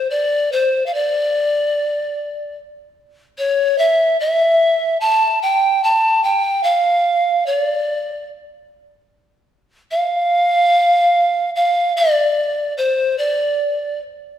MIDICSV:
0, 0, Header, 1, 2, 480
1, 0, Start_track
1, 0, Key_signature, -1, "minor"
1, 0, Tempo, 817439
1, 59, Time_signature, 4, 2, 24, 8
1, 8447, End_track
2, 0, Start_track
2, 0, Title_t, "Pan flute"
2, 0, Program_c, 0, 75
2, 62, Note_on_c, 0, 74, 100
2, 307, Note_on_c, 0, 72, 88
2, 316, Note_off_c, 0, 74, 0
2, 503, Note_off_c, 0, 72, 0
2, 507, Note_on_c, 0, 77, 62
2, 553, Note_on_c, 0, 74, 98
2, 562, Note_off_c, 0, 77, 0
2, 1509, Note_off_c, 0, 74, 0
2, 1987, Note_on_c, 0, 73, 92
2, 2222, Note_on_c, 0, 76, 96
2, 2231, Note_off_c, 0, 73, 0
2, 2462, Note_off_c, 0, 76, 0
2, 2468, Note_on_c, 0, 76, 102
2, 2922, Note_off_c, 0, 76, 0
2, 2940, Note_on_c, 0, 81, 105
2, 3164, Note_off_c, 0, 81, 0
2, 3186, Note_on_c, 0, 79, 106
2, 3427, Note_on_c, 0, 81, 106
2, 3436, Note_off_c, 0, 79, 0
2, 3661, Note_off_c, 0, 81, 0
2, 3665, Note_on_c, 0, 79, 102
2, 3897, Note_on_c, 0, 77, 97
2, 3906, Note_off_c, 0, 79, 0
2, 4383, Note_on_c, 0, 73, 87
2, 4392, Note_off_c, 0, 77, 0
2, 4454, Note_off_c, 0, 73, 0
2, 4454, Note_on_c, 0, 74, 87
2, 4861, Note_off_c, 0, 74, 0
2, 5821, Note_on_c, 0, 77, 115
2, 6755, Note_off_c, 0, 77, 0
2, 6786, Note_on_c, 0, 77, 101
2, 7006, Note_off_c, 0, 77, 0
2, 7027, Note_on_c, 0, 74, 108
2, 7479, Note_off_c, 0, 74, 0
2, 7502, Note_on_c, 0, 72, 88
2, 7741, Note_on_c, 0, 74, 92
2, 7749, Note_off_c, 0, 72, 0
2, 8219, Note_off_c, 0, 74, 0
2, 8447, End_track
0, 0, End_of_file